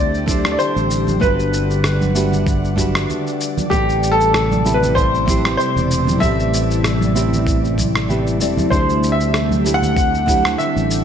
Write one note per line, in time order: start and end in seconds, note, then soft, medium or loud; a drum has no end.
0.00 0.55 D2 medium
0.00 3.67 D3 medium
0.00 11.04 G3 medium
0.00 0.24 A3 medium
0.00 1.19 A3 medium
0.00 1.19 C4 medium
0.00 0.24 D4 medium
0.00 0.24 E4 medium
0.00 0.25 G4 medium
0.00 1.19 G4 medium
0.00 0.25 C5 medium
0.00 0.50 D5 loud
0.15 shaker soft
0.26 1.17 A3 medium
0.26 1.18 D4 medium
0.26 1.18 E4 medium
0.26 1.19 G4 medium
0.26 kick medium
0.26 high conga medium
0.26 shaker medium
0.31 1.20 C5 loud
0.45 cross-stick medium
0.45 shaker soft
0.52 0.59 D5 medium
0.59 1.23 C5 medium
0.59 shaker soft
0.76 1.17 A1 medium
0.76 shaker soft
0.91 shaker medium
1.07 high conga medium
1.07 low conga medium
1.07 shaker soft
1.20 3.05 G1 medium
1.20 2.11 A3 medium
1.20 2.11 D4 medium
1.20 2.12 F#4 medium
1.20 2.13 G4 medium
1.20 2.42 B4 medium
1.20 8.68 D5 medium
1.20 3.69 F#5 medium
1.20 kick loud
1.20 shaker soft
1.24 2.13 B4 loud
1.40 shaker soft
1.54 shaker medium
1.71 shaker soft
1.84 cross-stick medium
1.84 shaker soft
2.01 high conga medium
2.01 shaker soft
2.15 2.74 A3 medium
2.15 2.74 D4 medium
2.15 2.75 F#4 medium
2.15 2.75 G4 medium
2.15 2.75 B4 medium
2.15 shaker medium
2.32 low conga medium
2.32 shaker soft
2.47 kick loud
2.47 shaker soft
2.65 shaker soft
2.76 3.67 A3 medium
2.76 3.68 D4 medium
2.76 3.68 F#4 medium
2.76 3.69 G4 medium
2.76 kick medium
2.76 high conga medium
2.76 shaker medium
2.80 3.69 B4 medium
2.95 cross-stick medium
2.95 shaker soft
3.10 low conga medium
3.10 shaker soft
3.27 shaker soft
3.41 shaker medium
3.57 high conga medium
3.57 low conga medium
3.57 shaker soft
3.70 5.55 A1 medium
3.70 8.68 C3 medium
3.70 4.61 A3 medium
3.70 11.04 A3 medium
3.70 4.62 C4 medium
3.70 8.68 E4 medium
3.70 4.14 G4 medium
3.70 4.63 G4 medium
3.70 kick loud
3.70 shaker soft
3.74 4.63 B4 loud
3.89 shaker soft
4.03 shaker medium
4.12 4.77 A4 loud
4.21 shaker soft
4.34 cross-stick medium
4.34 shaker soft
4.51 high conga medium
4.51 shaker soft
4.65 5.24 A3 medium
4.65 5.24 C4 medium
4.65 5.24 E4 medium
4.65 5.25 G4 medium
4.65 5.25 B4 medium
4.65 shaker medium
4.74 4.94 B4 medium
4.83 low conga medium
4.83 shaker soft
4.95 5.56 C5 medium
4.95 kick loud
4.95 shaker soft
5.15 shaker soft
5.26 6.17 A3 medium
5.26 6.18 C4 medium
5.26 6.18 E4 medium
5.26 6.19 G4 medium
5.26 kick loud
5.26 high conga medium
5.26 shaker medium
5.30 6.19 C5 medium
5.45 cross-stick medium
5.45 shaker soft
5.57 6.23 C5 loud
5.57 shaker soft
5.76 6.17 E1 medium
5.76 shaker soft
5.91 shaker medium
6.07 high conga medium
6.07 low conga medium
6.07 shaker soft
6.20 8.40 A1 medium
6.20 7.11 A3 medium
6.20 7.11 C4 medium
6.20 7.13 G4 medium
6.20 8.04 E5 loud
6.20 kick loud
6.20 shaker soft
6.24 7.13 B4 loud
6.40 shaker soft
6.54 shaker medium
6.71 shaker soft
6.84 cross-stick medium
6.84 shaker soft
7.01 high conga medium
7.01 shaker soft
7.15 7.74 A3 medium
7.15 7.74 C4 medium
7.15 7.75 E4 medium
7.15 7.75 G4 medium
7.15 7.75 B4 medium
7.15 shaker medium
7.33 low conga medium
7.33 shaker soft
7.47 kick loud
7.47 shaker soft
7.65 shaker soft
7.78 kick medium
7.78 high conga medium
7.78 shaker medium
7.95 cross-stick medium
7.95 shaker soft
8.08 8.37 A3 medium
8.08 8.37 C4 medium
8.08 8.37 E4 medium
8.08 8.38 G4 medium
8.08 8.38 B4 medium
8.08 low conga medium
8.08 shaker soft
8.27 shaker soft
8.40 8.66 E1 medium
8.40 8.68 A3 medium
8.40 8.68 C4 medium
8.40 8.69 E4 medium
8.40 8.69 G4 medium
8.40 8.69 D5 medium
8.40 shaker medium
8.57 high conga medium
8.57 low conga medium
8.57 shaker soft
8.70 10.55 D2 medium
8.70 11.04 D3 medium
8.70 9.61 A3 medium
8.70 11.04 C4 medium
8.70 9.62 D4 medium
8.70 9.62 E4 medium
8.70 11.04 G4 medium
8.70 9.63 G4 medium
8.70 9.14 C5 medium
8.70 kick loud
8.70 shaker soft
8.75 9.63 C5 loud
8.90 shaker soft
9.04 shaker medium
9.12 9.77 E5 medium
9.21 shaker soft
9.34 cross-stick medium
9.34 shaker soft
9.51 high conga medium
9.51 shaker soft
9.64 10.24 A3 medium
9.64 10.24 D4 medium
9.64 10.25 E4 medium
9.64 10.25 G4 medium
9.64 10.25 C5 medium
9.64 shaker medium
9.74 10.61 F#5 loud
9.82 low conga medium
9.82 shaker soft
9.97 kick loud
9.97 shaker soft
10.15 shaker soft
10.26 11.04 A3 medium
10.26 11.04 D4 medium
10.26 11.04 E4 medium
10.26 11.04 G4 medium
10.26 kick medium
10.26 high conga medium
10.26 shaker medium
10.30 11.04 C5 medium
10.45 cross-stick medium
10.45 shaker soft
10.58 11.04 E5 medium
10.58 shaker soft
10.76 11.04 A1 medium
10.76 shaker soft
10.91 shaker medium